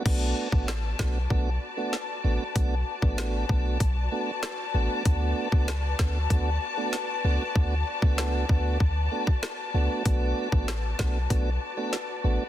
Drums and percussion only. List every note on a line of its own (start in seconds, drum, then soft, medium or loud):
0.06 kick loud
0.06 crash medium
0.52 kick loud
0.68 cross-stick medium
0.68 snare loud
0.99 kick medium
0.99 cross-stick medium
0.99 snare loud
1.30 kick medium
1.93 snare medium
2.56 kick loud
2.56 closed hi-hat medium
3.02 kick medium
3.18 cross-stick medium
3.18 snare loud
3.18 closed hi-hat medium
3.49 kick medium
3.80 kick medium
3.80 closed hi-hat medium
4.43 cross-stick medium
4.43 snare loud
4.43 closed hi-hat medium
5.05 kick loud
5.05 closed hi-hat medium
5.52 kick medium
5.68 cross-stick medium
5.68 snare loud
5.68 closed hi-hat medium
5.99 kick medium
5.99 cross-stick medium
5.99 snare loud
6.30 kick medium
6.30 closed hi-hat medium
6.93 snare medium
6.93 closed hi-hat medium
7.56 kick loud
8.02 kick medium
8.18 cross-stick medium
8.18 snare loud
8.49 kick medium
8.80 kick medium
9.27 kick medium
9.43 cross-stick medium
9.43 snare loud
10.06 kick loud
10.06 closed hi-hat medium
10.52 kick loud
10.68 cross-stick medium
10.68 snare loud
10.68 closed hi-hat medium
10.99 kick medium
10.99 cross-stick loud
10.99 snare loud
11.30 kick medium
11.30 closed hi-hat medium
11.93 snare medium
11.93 closed hi-hat medium